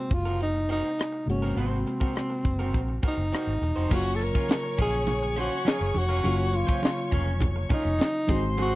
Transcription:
Already playing: reed electric piano C3 G#3 A#3 F#4, tenor saxophone C4
0.11 fingered electric bass F#1, tenor saxophone F4, kick, closed hi-hat
0.25 clean electric guitar C4 F#4 A#4, closed hi-hat
0.41 tenor saxophone D#4, closed hi-hat
0.55 muted clean electric guitar stroke
0.69 clean electric guitar C4 F#4 A#4, tenor saxophone D#4, closed hi-hat
0.84 muted clean electric guitar stroke, closed hi-hat
0.98 muted clean electric guitar stroke, cross-stick, closed hi-hat
1.12 muted clean electric guitar stroke
1.26 fingered electric bass G1, reed electric piano C3 G#3 A#3 F#4, tenor saxophone C#4, closed hi-hat
1.42 clean electric guitar C4 F#4 A#4, closed hi-hat
1.56 fingered electric bass G#1, clean electric guitar C4 F#4 C5, tenor saxophone C4, closed hi-hat
1.86 muted clean electric guitar stroke, closed hi-hat
2.00 clean electric guitar C4 F#4 A#4, kick, closed hi-hat
2.15 muted clean electric guitar stroke, cross-stick, closed hi-hat
2.30 muted clean electric guitar stroke, closed hi-hat
2.45 fingered electric bass F#1, kick, closed hi-hat
2.59 clean electric guitar C4 F#4 A#4, closed hi-hat
2.74 fingered electric bass A#1, kick, closed hi-hat
2.89 muted clean electric guitar stroke
3.03 clean electric guitar C4 F#4 A#4, kick, closed hi-hat
3.07 tenor saxophone D#4
3.17 fingered electric bass F#1, muted clean electric guitar stroke, closed hi-hat
3.32 clean electric guitar C4 F#4 A#4, cross-stick, closed hi-hat
3.47 fingered electric bass G#1
3.61 fingered electric bass E1, muted clean electric guitar stroke, closed hi-hat
3.76 fingered electric bass F1, clean electric guitar C4 F#4 C5, closed hi-hat
3.89 fingered electric bass F#1, reed electric piano C#3 F#3 A#3 F4, clean electric guitar C#4 F4 A#4, violin section C#5 C#6, kick, crash, muted conga
3.94 tenor saxophone F#4
4.05 muted clean electric guitar stroke
4.16 tenor saxophone A4, muted conga
4.20 tenor saxophone A#4, muted clean electric guitar stroke, closed hi-hat
4.35 clean electric guitar C#4 F4 A#4, muted fingered electric bass stroke, kick, closed hi-hat
4.49 muted clean electric guitar stroke, snare, closed hi-hat, high conga
4.63 muted clean electric guitar stroke, closed hi-hat
4.78 fingered electric bass A#1, clean electric guitar C#4 F4 A#4, tenor saxophone G#4, kick, closed hi-hat
4.93 muted clean electric guitar stroke, closed hi-hat
5.07 muted clean electric guitar stroke, closed hi-hat, muted conga, low conga
5.23 muted clean electric guitar stroke
5.36 clean electric guitar C#4 F4 C5, tenor saxophone F#4, closed hi-hat, muted conga
5.51 muted clean electric guitar stroke, closed hi-hat
5.65 clean electric guitar C#4 F4 A#4, tenor saxophone G#4, snare, closed hi-hat, high conga
5.81 fingered electric bass F#1
5.94 fingered electric bass F1, tenor saxophone F#4, muted clean electric guitar stroke, open hi-hat, high conga
6.09 clean electric guitar C#4 F4 A#4, closed hi-hat
6.23 fingered electric bass F#1, reed electric piano C#3 F#3 A#3 F4, clean electric guitar C#4 F4 A#4, closed hi-hat, muted conga
6.38 muted clean electric guitar stroke, closed hi-hat
6.53 tenor saxophone F4, muted clean electric guitar stroke, closed hi-hat, muted conga
6.67 clean electric guitar C#4 F4 C5, kick, closed hi-hat
6.82 muted clean electric guitar stroke, snare, closed hi-hat, high conga
6.97 muted clean electric guitar stroke
7.11 fingered electric bass F1, clean electric guitar C#4 F4 A#4, kick, closed hi-hat
7.26 muted clean electric guitar stroke, closed hi-hat
7.40 muted clean electric guitar stroke, kick, closed hi-hat, muted conga, low conga
7.56 muted clean electric guitar stroke
7.69 clean electric guitar C#4 F4 A#4, muted fingered electric bass stroke, kick, closed hi-hat, muted conga, low conga
7.74 tenor saxophone D#4
7.85 fingered electric bass F1, muted clean electric guitar stroke, closed hi-hat
7.99 muted clean electric guitar stroke, snare, closed hi-hat, high conga
8.14 closed hi-hat
8.27 fingered electric bass G#1, reed electric piano D#3 G#3 C4 F#4, clean electric guitar C4 F#4 G#4, violin section C5 C6, kick, open hi-hat, high conga
8.43 muted clean electric guitar stroke, closed hi-hat
8.57 clean electric guitar C4 F#4 G#4, tenor saxophone F#4, closed hi-hat, muted conga

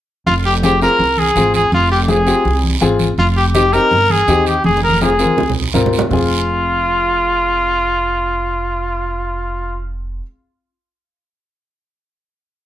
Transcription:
0.26 upright bass F1, trumpet F4, high conga, long guiro
0.45 trumpet G4
0.63 upright piano C4 F4 G#4, trumpet G4, high conga, short guiro
0.81 upright piano C4 F4 G#4, trumpet A#4, short guiro
0.99 upright bass C2, high conga, long guiro
1.17 trumpet G#4, high conga
1.35 upright bass G#1, upright piano C4 F4 G#4, high conga, short guiro
1.54 trumpet G#4, high conga, short guiro
1.72 upright bass F1, trumpet F4, long guiro
1.92 trumpet G4
2.08 upright piano C4 F4 G#4, trumpet G#4, high conga, short guiro
2.26 upright piano C4 F4 G4, short guiro
2.45 upright bass C2, high conga, long guiro
2.64 high conga
2.81 upright bass G#1, upright piano C4 F4 G#4, high conga, short guiro
2.99 high conga, short guiro
3.18 upright bass F1, trumpet F4, high conga, long guiro
3.37 trumpet G4
3.54 upright piano C4 D#4 G4, trumpet G4, high conga, short guiro
3.73 upright piano C4 D#4 G4, trumpet A#4, short guiro
3.91 upright bass G1, high conga, long guiro
4.09 trumpet G#4, high conga
4.28 upright bass D#2, upright piano C4 D#4 G4, high conga, short guiro
4.46 trumpet G4, short guiro
4.64 upright bass F1, trumpet G#4, high conga, long guiro
4.77 high conga
4.84 trumpet A#4
4.89 high conga
5.01 upright piano C4 F4 G#4, trumpet G#4, high conga, short guiro
5.19 upright piano C4 F4 A#4, short guiro
5.26 high conga
5.37 upright bass C2, low conga, long guiro
5.50 low conga
5.62 low conga
5.74 upright bass G#1, upright piano C4 F4 A#4, low conga, short guiro
5.86 low conga
5.93 short guiro
5.99 low conga
6.09 upright bass F1, upright piano C4 F4, trumpet F4, low conga, long guiro
6.13 upright piano G#4

